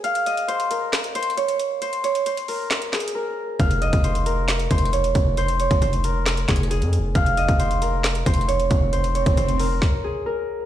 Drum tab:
HH |x--x--x--x--x--x--x-----x--x--x-x-x-x--x--x-----|x--x--x--x--x--x--o-----x--x--x-x-x-------------|x--x--x--x--x--x--x-----x--x--x-x-x-x--x--x-----|x--x--x--x--x--x--x-----x--x--x-x-x-x--x--x-----|
CP |------------------------x-----------------------|------------------------x-----x-----------------|------------------------x-----------------------|------------------------x-----x-----------------|
SD |------------------------o-----------------------|------------------------o-----o-----------------|------------------------o-----------------------|------------------------o-----o-----------------|
BD |------------------------------------------------|------------------------------------------------|o--------o--------------------o-----------o-----|---------o--------------------o-----------------|

HH |x--x--x--x--x--x--x-----x--x--x-x-x-x--x--x-----|x--x--x--x--x--x--o-----------------------------|
CP |------------------------x-----------------------|------------------------------------------------|
SD |------------------------o-----------------------|------------------------o-----------------------|
BD |o--------o--------------------o-----------o-----|---------o--------------o-----------------------|